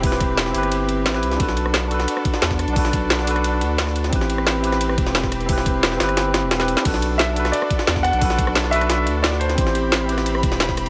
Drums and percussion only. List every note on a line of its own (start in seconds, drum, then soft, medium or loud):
0.03 kick loud
0.03 closed hi-hat medium
0.03 open hi-hat medium
0.12 snare soft
0.20 kick loud
0.20 closed hi-hat medium
0.20 ride medium
0.37 snare loud
0.37 closed hi-hat medium
0.37 ride medium
0.46 snare soft
0.54 open hi-hat medium
0.54 ride medium
0.63 cross-stick soft
0.63 closed hi-hat soft
0.72 closed hi-hat medium
0.72 ride medium
0.89 closed hi-hat medium
0.89 ride medium
1.06 snare loud
1.06 closed hi-hat medium
1.06 ride medium
1.14 cross-stick soft
1.14 snare soft
1.14 closed hi-hat soft
1.23 closed hi-hat medium
1.23 ride medium
1.31 snare soft
1.31 closed hi-hat soft
1.40 kick loud
1.40 closed hi-hat medium
1.40 ride medium
1.49 snare soft
1.57 closed hi-hat medium
1.57 ride medium
1.66 cross-stick medium
1.74 snare loud
1.74 closed hi-hat medium
1.74 ride medium
1.91 closed hi-hat medium
1.91 ride medium
2.00 cross-stick soft
2.00 snare soft
2.00 closed hi-hat soft
2.08 closed hi-hat medium
2.08 ride medium
2.17 cross-stick soft
2.25 kick loud
2.25 closed hi-hat medium
2.25 ride medium
2.34 snare medium
2.42 snare loud
2.42 closed hi-hat medium
2.42 ride medium
2.51 kick medium
2.51 snare soft
2.59 cross-stick soft
2.59 closed hi-hat medium
2.59 ride medium
2.68 closed hi-hat soft
2.76 kick loud
2.76 closed hi-hat medium
2.76 open hi-hat medium
2.85 snare medium
2.93 kick loud
2.93 closed hi-hat medium
2.93 ride medium
3.10 snare loud
3.10 closed hi-hat medium
3.10 ride medium
3.19 snare soft
3.27 open hi-hat medium
3.27 ride medium
3.36 cross-stick soft
3.36 closed hi-hat soft
3.44 closed hi-hat medium
3.44 ride medium
3.61 closed hi-hat medium
3.61 ride medium
3.78 snare loud
3.78 closed hi-hat loud
3.78 ride medium
3.87 cross-stick soft
3.87 snare soft
3.96 closed hi-hat medium
3.96 ride medium
4.04 snare soft
4.04 closed hi-hat soft
4.13 kick loud
4.13 closed hi-hat loud
4.13 ride medium
4.21 snare soft
4.30 closed hi-hat medium
4.30 ride medium
4.38 cross-stick medium
4.47 snare loud
4.47 closed hi-hat loud
4.47 ride medium
4.64 closed hi-hat medium
4.64 ride medium
4.72 cross-stick soft
4.72 snare soft
4.72 closed hi-hat soft
4.81 closed hi-hat loud
4.81 ride medium
4.89 cross-stick soft
4.98 kick loud
4.98 closed hi-hat medium
4.98 ride medium
5.07 snare medium
5.15 snare loud
5.15 closed hi-hat loud
5.15 ride medium
5.23 kick medium
5.23 snare soft
5.32 cross-stick soft
5.32 closed hi-hat medium
5.32 ride medium
5.40 closed hi-hat soft
5.49 kick loud
5.49 closed hi-hat loud
5.49 open hi-hat medium
5.58 snare medium
5.66 kick loud
5.66 closed hi-hat medium
5.66 ride medium
5.83 snare loud
5.83 closed hi-hat loud
5.83 ride medium
5.92 snare soft
6.00 snare loud
6.00 open hi-hat medium
6.00 ride medium
6.09 cross-stick soft
6.09 closed hi-hat soft
6.17 snare loud
6.17 closed hi-hat loud
6.17 ride medium
6.34 snare loud
6.34 closed hi-hat medium
6.34 ride medium
6.51 snare medium
6.51 snare loud
6.51 closed hi-hat loud
6.51 ride medium
6.60 snare medium
6.60 snare soft
6.60 closed hi-hat soft
6.68 closed hi-hat medium
6.68 ride medium
6.77 snare soft
6.77 snare medium
6.77 closed hi-hat soft
6.85 kick loud
6.85 closed hi-hat loud
6.85 crash loud
6.85 ride medium
6.94 snare soft
7.02 closed hi-hat medium
7.02 ride medium
7.19 snare loud
7.19 closed hi-hat loud
7.19 ride medium
7.36 closed hi-hat medium
7.36 ride medium
7.45 cross-stick soft
7.45 snare soft
7.45 closed hi-hat soft
7.53 closed hi-hat loud
7.53 ride medium
7.62 cross-stick medium
7.70 kick loud
7.70 closed hi-hat medium
7.70 ride medium
7.79 snare medium
7.87 snare loud
7.87 closed hi-hat loud
7.87 ride medium
7.96 kick medium
7.96 snare soft
8.04 cross-stick soft
8.04 closed hi-hat medium
8.04 ride medium
8.13 closed hi-hat soft
8.21 kick loud
8.21 closed hi-hat loud
8.21 open hi-hat medium
8.30 snare medium
8.39 kick loud
8.39 closed hi-hat medium
8.39 ride medium
8.47 cross-stick medium
8.55 snare loud
8.55 closed hi-hat medium
8.55 ride medium
8.64 snare soft
8.72 open hi-hat medium
8.72 ride medium
8.81 cross-stick soft
8.81 closed hi-hat soft
8.90 snare loud
8.90 closed hi-hat loud
8.90 ride medium
9.07 closed hi-hat medium
9.07 ride medium
9.24 snare loud
9.24 closed hi-hat medium
9.24 ride medium
9.32 snare soft
9.41 closed hi-hat medium
9.41 ride medium
9.49 snare soft
9.49 closed hi-hat soft
9.58 kick loud
9.58 closed hi-hat medium
9.58 ride medium
9.67 snare soft
9.75 closed hi-hat medium
9.75 ride medium
9.92 snare loud
9.92 closed hi-hat medium
9.92 ride medium
10.09 closed hi-hat medium
10.09 ride medium
10.18 cross-stick soft
10.18 snare soft
10.18 closed hi-hat soft
10.26 closed hi-hat medium
10.26 ride medium
10.35 cross-stick medium
10.43 kick loud
10.43 closed hi-hat medium
10.43 ride medium
10.52 snare medium
10.60 snare loud
10.60 closed hi-hat medium
10.60 ride medium
10.69 kick medium
10.69 snare soft
10.77 cross-stick soft
10.77 closed hi-hat medium
10.77 ride medium
10.86 closed hi-hat soft